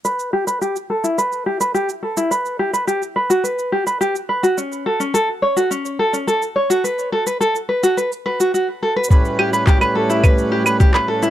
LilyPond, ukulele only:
\new Staff \with { instrumentName = "Ukulele" } { \time 4/4 \key a \mixolydian \tempo 4 = 106 b'8 g'16 b'16 g'16 r16 a'16 e'16 b'8 g'16 b'16 g'16 r16 a'16 e'16 | b'8 g'16 b'16 g'16 r16 b'16 fis'16 b'8 g'16 b'16 g'16 r16 b'16 fis'16 | cis'8 a'16 cis'16 a'16 r16 cis''16 fis'16 cis'8 a'16 cis'16 a'16 r16 cis''16 fis'16 | b'8 a'16 b'16 a'16 r16 b'16 fis'16 b'16 r16 b'16 fis'16 fis'16 r16 a'16 b'16 |
b'8 g'16 b'16 g'16 b'16 a'16 e'16 b'8 g'16 b'16 g'16 b'16 a'16 e'16 | }